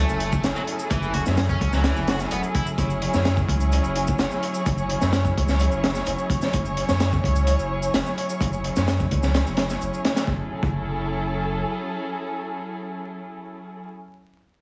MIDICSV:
0, 0, Header, 1, 5, 480
1, 0, Start_track
1, 0, Key_signature, 3, "minor"
1, 0, Tempo, 468750
1, 929, Time_signature, 4, 2, 24, 8
1, 14963, End_track
2, 0, Start_track
2, 0, Title_t, "String section"
2, 0, Program_c, 0, 48
2, 0, Note_on_c, 0, 54, 82
2, 0, Note_on_c, 0, 61, 76
2, 0, Note_on_c, 0, 64, 75
2, 0, Note_on_c, 0, 68, 74
2, 0, Note_on_c, 0, 69, 92
2, 2832, Note_off_c, 0, 69, 0
2, 2848, Note_on_c, 0, 73, 89
2, 10488, Note_off_c, 0, 61, 0
2, 10488, Note_off_c, 0, 64, 0
2, 10488, Note_off_c, 0, 68, 0
2, 10489, Note_off_c, 0, 54, 0
2, 10512, Note_off_c, 0, 73, 0
2, 10526, Note_on_c, 0, 61, 68
2, 10526, Note_on_c, 0, 68, 68
2, 10527, Note_on_c, 0, 69, 86
2, 10528, Note_on_c, 0, 54, 79
2, 10529, Note_on_c, 0, 64, 68
2, 14194, Note_off_c, 0, 61, 0
2, 14194, Note_off_c, 0, 68, 0
2, 14196, Note_off_c, 0, 69, 0
2, 14197, Note_off_c, 0, 54, 0
2, 14197, Note_off_c, 0, 64, 0
2, 14963, End_track
3, 0, Start_track
3, 0, Title_t, "Overdriven electric guitar"
3, 0, Program_c, 1, 29
3, 0, Note_on_c, 1, 57, 81
3, 439, Note_off_c, 1, 57, 0
3, 575, Note_on_c, 1, 54, 70
3, 626, Note_off_c, 1, 54, 0
3, 929, Note_on_c, 1, 52, 79
3, 1157, Note_off_c, 1, 52, 0
3, 1171, Note_on_c, 1, 66, 72
3, 1264, Note_off_c, 1, 66, 0
3, 1533, Note_on_c, 1, 61, 94
3, 1760, Note_off_c, 1, 61, 0
3, 1769, Note_on_c, 1, 54, 74
3, 1875, Note_off_c, 1, 54, 0
3, 1889, Note_on_c, 1, 52, 78
3, 2117, Note_off_c, 1, 52, 0
3, 2132, Note_on_c, 1, 66, 71
3, 2224, Note_off_c, 1, 66, 0
3, 2371, Note_on_c, 1, 59, 93
3, 2464, Note_off_c, 1, 59, 0
3, 2611, Note_on_c, 1, 64, 68
3, 2727, Note_off_c, 1, 64, 0
3, 14963, End_track
4, 0, Start_track
4, 0, Title_t, "Sub bass"
4, 0, Program_c, 2, 38
4, 98, Note_on_c, 2, 30, 86
4, 398, Note_off_c, 2, 30, 0
4, 454, Note_on_c, 2, 30, 96
4, 539, Note_off_c, 2, 30, 0
4, 929, Note_on_c, 2, 30, 100
4, 1236, Note_off_c, 2, 30, 0
4, 1297, Note_on_c, 2, 42, 81
4, 1597, Note_off_c, 2, 42, 0
4, 1650, Note_on_c, 2, 37, 74
4, 1956, Note_off_c, 2, 37, 0
4, 2016, Note_on_c, 2, 30, 87
4, 2317, Note_off_c, 2, 30, 0
4, 2371, Note_on_c, 2, 28, 82
4, 2458, Note_off_c, 2, 28, 0
4, 2845, Note_on_c, 2, 30, 97
4, 3154, Note_off_c, 2, 30, 0
4, 3216, Note_on_c, 2, 42, 81
4, 3517, Note_off_c, 2, 42, 0
4, 3569, Note_on_c, 2, 37, 72
4, 3875, Note_off_c, 2, 37, 0
4, 3935, Note_on_c, 2, 30, 88
4, 4236, Note_off_c, 2, 30, 0
4, 4290, Note_on_c, 2, 30, 97
4, 4377, Note_off_c, 2, 30, 0
4, 4774, Note_on_c, 2, 30, 95
4, 5078, Note_off_c, 2, 30, 0
4, 5139, Note_on_c, 2, 42, 83
4, 5438, Note_off_c, 2, 42, 0
4, 5505, Note_on_c, 2, 37, 77
4, 5803, Note_off_c, 2, 37, 0
4, 5857, Note_on_c, 2, 30, 85
4, 6157, Note_off_c, 2, 30, 0
4, 6213, Note_on_c, 2, 30, 98
4, 6299, Note_off_c, 2, 30, 0
4, 6697, Note_on_c, 2, 30, 101
4, 6999, Note_off_c, 2, 30, 0
4, 7058, Note_on_c, 2, 42, 84
4, 7358, Note_off_c, 2, 42, 0
4, 7416, Note_on_c, 2, 37, 74
4, 7719, Note_off_c, 2, 37, 0
4, 7774, Note_on_c, 2, 30, 80
4, 8076, Note_off_c, 2, 30, 0
4, 8134, Note_on_c, 2, 30, 92
4, 8219, Note_off_c, 2, 30, 0
4, 8609, Note_on_c, 2, 30, 98
4, 8915, Note_off_c, 2, 30, 0
4, 8977, Note_on_c, 2, 42, 78
4, 9277, Note_off_c, 2, 42, 0
4, 9339, Note_on_c, 2, 37, 74
4, 9640, Note_off_c, 2, 37, 0
4, 9698, Note_on_c, 2, 30, 84
4, 9998, Note_off_c, 2, 30, 0
4, 10054, Note_on_c, 2, 30, 83
4, 10139, Note_off_c, 2, 30, 0
4, 10521, Note_on_c, 2, 30, 95
4, 10661, Note_off_c, 2, 30, 0
4, 10883, Note_on_c, 2, 30, 90
4, 11923, Note_off_c, 2, 30, 0
4, 14963, End_track
5, 0, Start_track
5, 0, Title_t, "Drums"
5, 94, Note_on_c, 9, 82, 32
5, 95, Note_on_c, 9, 64, 73
5, 196, Note_off_c, 9, 82, 0
5, 198, Note_off_c, 9, 64, 0
5, 207, Note_on_c, 9, 42, 58
5, 309, Note_off_c, 9, 42, 0
5, 333, Note_on_c, 9, 82, 62
5, 335, Note_on_c, 9, 36, 86
5, 435, Note_off_c, 9, 82, 0
5, 438, Note_off_c, 9, 36, 0
5, 447, Note_on_c, 9, 42, 82
5, 450, Note_on_c, 9, 82, 51
5, 451, Note_on_c, 9, 38, 100
5, 549, Note_off_c, 9, 42, 0
5, 552, Note_off_c, 9, 82, 0
5, 554, Note_off_c, 9, 38, 0
5, 574, Note_on_c, 9, 82, 30
5, 676, Note_off_c, 9, 82, 0
5, 689, Note_on_c, 9, 42, 61
5, 792, Note_off_c, 9, 42, 0
5, 812, Note_on_c, 9, 82, 60
5, 915, Note_off_c, 9, 82, 0
5, 927, Note_on_c, 9, 42, 92
5, 928, Note_on_c, 9, 82, 48
5, 929, Note_on_c, 9, 36, 105
5, 1029, Note_off_c, 9, 42, 0
5, 1030, Note_off_c, 9, 82, 0
5, 1031, Note_off_c, 9, 36, 0
5, 1051, Note_on_c, 9, 82, 29
5, 1154, Note_off_c, 9, 82, 0
5, 1163, Note_on_c, 9, 42, 69
5, 1164, Note_on_c, 9, 64, 85
5, 1266, Note_off_c, 9, 42, 0
5, 1267, Note_off_c, 9, 64, 0
5, 1289, Note_on_c, 9, 82, 57
5, 1295, Note_on_c, 9, 38, 39
5, 1391, Note_off_c, 9, 82, 0
5, 1398, Note_off_c, 9, 38, 0
5, 1405, Note_on_c, 9, 82, 50
5, 1409, Note_on_c, 9, 38, 100
5, 1409, Note_on_c, 9, 42, 74
5, 1508, Note_off_c, 9, 82, 0
5, 1511, Note_off_c, 9, 38, 0
5, 1511, Note_off_c, 9, 42, 0
5, 1528, Note_on_c, 9, 36, 85
5, 1529, Note_on_c, 9, 82, 30
5, 1631, Note_off_c, 9, 36, 0
5, 1631, Note_off_c, 9, 82, 0
5, 1649, Note_on_c, 9, 64, 89
5, 1650, Note_on_c, 9, 36, 87
5, 1650, Note_on_c, 9, 63, 58
5, 1652, Note_on_c, 9, 42, 67
5, 1751, Note_off_c, 9, 64, 0
5, 1752, Note_off_c, 9, 36, 0
5, 1752, Note_off_c, 9, 63, 0
5, 1754, Note_off_c, 9, 42, 0
5, 1769, Note_on_c, 9, 82, 55
5, 1771, Note_on_c, 9, 38, 43
5, 1872, Note_off_c, 9, 82, 0
5, 1873, Note_off_c, 9, 38, 0
5, 1883, Note_on_c, 9, 42, 71
5, 1884, Note_on_c, 9, 38, 102
5, 1888, Note_on_c, 9, 82, 48
5, 1985, Note_off_c, 9, 42, 0
5, 1986, Note_off_c, 9, 38, 0
5, 1991, Note_off_c, 9, 82, 0
5, 2010, Note_on_c, 9, 64, 61
5, 2011, Note_on_c, 9, 82, 31
5, 2112, Note_off_c, 9, 64, 0
5, 2113, Note_off_c, 9, 82, 0
5, 2124, Note_on_c, 9, 42, 64
5, 2131, Note_on_c, 9, 38, 107
5, 2227, Note_off_c, 9, 42, 0
5, 2233, Note_off_c, 9, 38, 0
5, 2250, Note_on_c, 9, 82, 58
5, 2257, Note_on_c, 9, 38, 37
5, 2352, Note_off_c, 9, 82, 0
5, 2359, Note_off_c, 9, 38, 0
5, 2365, Note_on_c, 9, 42, 90
5, 2367, Note_on_c, 9, 82, 48
5, 2468, Note_off_c, 9, 42, 0
5, 2470, Note_off_c, 9, 82, 0
5, 2492, Note_on_c, 9, 82, 31
5, 2594, Note_off_c, 9, 82, 0
5, 2608, Note_on_c, 9, 42, 68
5, 2609, Note_on_c, 9, 36, 96
5, 2710, Note_off_c, 9, 42, 0
5, 2711, Note_off_c, 9, 36, 0
5, 2729, Note_on_c, 9, 82, 55
5, 2832, Note_off_c, 9, 82, 0
5, 2846, Note_on_c, 9, 36, 110
5, 2848, Note_on_c, 9, 42, 76
5, 2848, Note_on_c, 9, 82, 47
5, 2948, Note_off_c, 9, 36, 0
5, 2950, Note_off_c, 9, 82, 0
5, 2951, Note_off_c, 9, 42, 0
5, 2971, Note_on_c, 9, 82, 28
5, 3073, Note_off_c, 9, 82, 0
5, 3090, Note_on_c, 9, 42, 69
5, 3192, Note_off_c, 9, 42, 0
5, 3210, Note_on_c, 9, 82, 57
5, 3218, Note_on_c, 9, 38, 49
5, 3313, Note_off_c, 9, 82, 0
5, 3320, Note_off_c, 9, 38, 0
5, 3330, Note_on_c, 9, 38, 111
5, 3330, Note_on_c, 9, 42, 73
5, 3330, Note_on_c, 9, 82, 48
5, 3432, Note_off_c, 9, 38, 0
5, 3432, Note_off_c, 9, 82, 0
5, 3433, Note_off_c, 9, 42, 0
5, 3451, Note_on_c, 9, 36, 87
5, 3453, Note_on_c, 9, 82, 29
5, 3554, Note_off_c, 9, 36, 0
5, 3556, Note_off_c, 9, 82, 0
5, 3569, Note_on_c, 9, 36, 89
5, 3575, Note_on_c, 9, 42, 66
5, 3671, Note_off_c, 9, 36, 0
5, 3677, Note_off_c, 9, 42, 0
5, 3692, Note_on_c, 9, 82, 54
5, 3794, Note_off_c, 9, 82, 0
5, 3810, Note_on_c, 9, 82, 47
5, 3816, Note_on_c, 9, 42, 78
5, 3913, Note_off_c, 9, 82, 0
5, 3918, Note_off_c, 9, 42, 0
5, 3934, Note_on_c, 9, 82, 31
5, 4037, Note_off_c, 9, 82, 0
5, 4050, Note_on_c, 9, 42, 60
5, 4153, Note_off_c, 9, 42, 0
5, 4172, Note_on_c, 9, 82, 58
5, 4182, Note_on_c, 9, 36, 79
5, 4275, Note_off_c, 9, 82, 0
5, 4284, Note_off_c, 9, 36, 0
5, 4289, Note_on_c, 9, 82, 45
5, 4291, Note_on_c, 9, 38, 114
5, 4296, Note_on_c, 9, 42, 80
5, 4392, Note_off_c, 9, 82, 0
5, 4394, Note_off_c, 9, 38, 0
5, 4398, Note_off_c, 9, 42, 0
5, 4413, Note_on_c, 9, 82, 29
5, 4516, Note_off_c, 9, 82, 0
5, 4533, Note_on_c, 9, 42, 64
5, 4635, Note_off_c, 9, 42, 0
5, 4653, Note_on_c, 9, 82, 55
5, 4756, Note_off_c, 9, 82, 0
5, 4771, Note_on_c, 9, 82, 46
5, 4773, Note_on_c, 9, 42, 79
5, 4774, Note_on_c, 9, 36, 95
5, 4873, Note_off_c, 9, 82, 0
5, 4875, Note_off_c, 9, 42, 0
5, 4876, Note_off_c, 9, 36, 0
5, 4893, Note_on_c, 9, 82, 28
5, 4996, Note_off_c, 9, 82, 0
5, 5012, Note_on_c, 9, 42, 62
5, 5114, Note_off_c, 9, 42, 0
5, 5134, Note_on_c, 9, 38, 45
5, 5137, Note_on_c, 9, 82, 57
5, 5237, Note_off_c, 9, 38, 0
5, 5240, Note_off_c, 9, 82, 0
5, 5250, Note_on_c, 9, 38, 96
5, 5251, Note_on_c, 9, 82, 49
5, 5253, Note_on_c, 9, 42, 81
5, 5352, Note_off_c, 9, 38, 0
5, 5353, Note_off_c, 9, 82, 0
5, 5355, Note_off_c, 9, 42, 0
5, 5374, Note_on_c, 9, 36, 83
5, 5374, Note_on_c, 9, 82, 29
5, 5476, Note_off_c, 9, 82, 0
5, 5477, Note_off_c, 9, 36, 0
5, 5504, Note_on_c, 9, 42, 65
5, 5505, Note_on_c, 9, 36, 93
5, 5607, Note_off_c, 9, 36, 0
5, 5607, Note_off_c, 9, 42, 0
5, 5615, Note_on_c, 9, 82, 52
5, 5620, Note_on_c, 9, 38, 44
5, 5718, Note_off_c, 9, 82, 0
5, 5723, Note_off_c, 9, 38, 0
5, 5730, Note_on_c, 9, 82, 46
5, 5741, Note_on_c, 9, 42, 80
5, 5832, Note_off_c, 9, 82, 0
5, 5844, Note_off_c, 9, 42, 0
5, 5853, Note_on_c, 9, 82, 28
5, 5956, Note_off_c, 9, 82, 0
5, 5977, Note_on_c, 9, 42, 59
5, 5978, Note_on_c, 9, 38, 114
5, 6079, Note_off_c, 9, 42, 0
5, 6081, Note_off_c, 9, 38, 0
5, 6092, Note_on_c, 9, 82, 56
5, 6103, Note_on_c, 9, 38, 37
5, 6195, Note_off_c, 9, 82, 0
5, 6205, Note_off_c, 9, 38, 0
5, 6209, Note_on_c, 9, 82, 45
5, 6211, Note_on_c, 9, 42, 88
5, 6311, Note_off_c, 9, 82, 0
5, 6314, Note_off_c, 9, 42, 0
5, 6332, Note_on_c, 9, 82, 29
5, 6435, Note_off_c, 9, 82, 0
5, 6449, Note_on_c, 9, 36, 84
5, 6452, Note_on_c, 9, 42, 65
5, 6551, Note_off_c, 9, 36, 0
5, 6555, Note_off_c, 9, 42, 0
5, 6571, Note_on_c, 9, 82, 52
5, 6579, Note_on_c, 9, 38, 41
5, 6673, Note_off_c, 9, 82, 0
5, 6682, Note_off_c, 9, 38, 0
5, 6689, Note_on_c, 9, 42, 74
5, 6689, Note_on_c, 9, 82, 47
5, 6695, Note_on_c, 9, 36, 94
5, 6792, Note_off_c, 9, 42, 0
5, 6792, Note_off_c, 9, 82, 0
5, 6797, Note_off_c, 9, 36, 0
5, 6813, Note_on_c, 9, 82, 28
5, 6915, Note_off_c, 9, 82, 0
5, 6932, Note_on_c, 9, 42, 66
5, 7034, Note_off_c, 9, 42, 0
5, 7052, Note_on_c, 9, 38, 46
5, 7054, Note_on_c, 9, 82, 56
5, 7154, Note_off_c, 9, 38, 0
5, 7157, Note_off_c, 9, 82, 0
5, 7169, Note_on_c, 9, 42, 75
5, 7170, Note_on_c, 9, 82, 47
5, 7172, Note_on_c, 9, 38, 110
5, 7272, Note_off_c, 9, 42, 0
5, 7273, Note_off_c, 9, 82, 0
5, 7274, Note_off_c, 9, 38, 0
5, 7294, Note_on_c, 9, 82, 29
5, 7300, Note_on_c, 9, 36, 85
5, 7396, Note_off_c, 9, 82, 0
5, 7402, Note_off_c, 9, 36, 0
5, 7413, Note_on_c, 9, 36, 83
5, 7424, Note_on_c, 9, 42, 60
5, 7515, Note_off_c, 9, 36, 0
5, 7527, Note_off_c, 9, 42, 0
5, 7534, Note_on_c, 9, 82, 53
5, 7636, Note_off_c, 9, 82, 0
5, 7648, Note_on_c, 9, 42, 72
5, 7652, Note_on_c, 9, 82, 50
5, 7751, Note_off_c, 9, 42, 0
5, 7754, Note_off_c, 9, 82, 0
5, 7774, Note_on_c, 9, 82, 30
5, 7877, Note_off_c, 9, 82, 0
5, 8015, Note_on_c, 9, 82, 57
5, 8117, Note_off_c, 9, 82, 0
5, 8131, Note_on_c, 9, 82, 46
5, 8132, Note_on_c, 9, 38, 86
5, 8132, Note_on_c, 9, 42, 74
5, 8233, Note_off_c, 9, 82, 0
5, 8234, Note_off_c, 9, 38, 0
5, 8234, Note_off_c, 9, 42, 0
5, 8253, Note_on_c, 9, 82, 28
5, 8356, Note_off_c, 9, 82, 0
5, 8374, Note_on_c, 9, 42, 61
5, 8477, Note_off_c, 9, 42, 0
5, 8494, Note_on_c, 9, 82, 55
5, 8596, Note_off_c, 9, 82, 0
5, 8608, Note_on_c, 9, 36, 96
5, 8610, Note_on_c, 9, 82, 47
5, 8615, Note_on_c, 9, 42, 86
5, 8710, Note_off_c, 9, 36, 0
5, 8712, Note_off_c, 9, 82, 0
5, 8717, Note_off_c, 9, 42, 0
5, 8734, Note_on_c, 9, 82, 30
5, 8837, Note_off_c, 9, 82, 0
5, 8849, Note_on_c, 9, 42, 60
5, 8952, Note_off_c, 9, 42, 0
5, 8972, Note_on_c, 9, 82, 58
5, 8977, Note_on_c, 9, 38, 43
5, 9074, Note_off_c, 9, 82, 0
5, 9079, Note_off_c, 9, 38, 0
5, 9090, Note_on_c, 9, 82, 48
5, 9091, Note_on_c, 9, 38, 105
5, 9096, Note_on_c, 9, 42, 81
5, 9193, Note_off_c, 9, 38, 0
5, 9193, Note_off_c, 9, 82, 0
5, 9199, Note_off_c, 9, 42, 0
5, 9214, Note_on_c, 9, 82, 29
5, 9218, Note_on_c, 9, 36, 78
5, 9316, Note_off_c, 9, 82, 0
5, 9321, Note_off_c, 9, 36, 0
5, 9330, Note_on_c, 9, 42, 66
5, 9338, Note_on_c, 9, 36, 81
5, 9433, Note_off_c, 9, 42, 0
5, 9440, Note_off_c, 9, 36, 0
5, 9452, Note_on_c, 9, 82, 57
5, 9454, Note_on_c, 9, 38, 44
5, 9554, Note_off_c, 9, 82, 0
5, 9557, Note_off_c, 9, 38, 0
5, 9570, Note_on_c, 9, 42, 72
5, 9570, Note_on_c, 9, 82, 47
5, 9572, Note_on_c, 9, 38, 92
5, 9672, Note_off_c, 9, 42, 0
5, 9672, Note_off_c, 9, 82, 0
5, 9674, Note_off_c, 9, 38, 0
5, 9693, Note_on_c, 9, 82, 30
5, 9795, Note_off_c, 9, 82, 0
5, 9798, Note_on_c, 9, 42, 71
5, 9804, Note_on_c, 9, 38, 93
5, 9900, Note_off_c, 9, 42, 0
5, 9907, Note_off_c, 9, 38, 0
5, 9932, Note_on_c, 9, 82, 58
5, 9934, Note_on_c, 9, 38, 33
5, 10034, Note_off_c, 9, 82, 0
5, 10037, Note_off_c, 9, 38, 0
5, 10051, Note_on_c, 9, 82, 49
5, 10153, Note_off_c, 9, 82, 0
5, 10175, Note_on_c, 9, 82, 29
5, 10278, Note_off_c, 9, 82, 0
5, 10287, Note_on_c, 9, 42, 68
5, 10291, Note_on_c, 9, 38, 88
5, 10390, Note_off_c, 9, 42, 0
5, 10394, Note_off_c, 9, 38, 0
5, 10407, Note_on_c, 9, 38, 94
5, 10411, Note_on_c, 9, 42, 69
5, 10414, Note_on_c, 9, 82, 51
5, 10510, Note_off_c, 9, 38, 0
5, 10513, Note_off_c, 9, 42, 0
5, 10516, Note_off_c, 9, 82, 0
5, 10520, Note_on_c, 9, 36, 98
5, 10622, Note_off_c, 9, 36, 0
5, 10883, Note_on_c, 9, 36, 106
5, 10985, Note_off_c, 9, 36, 0
5, 14963, End_track
0, 0, End_of_file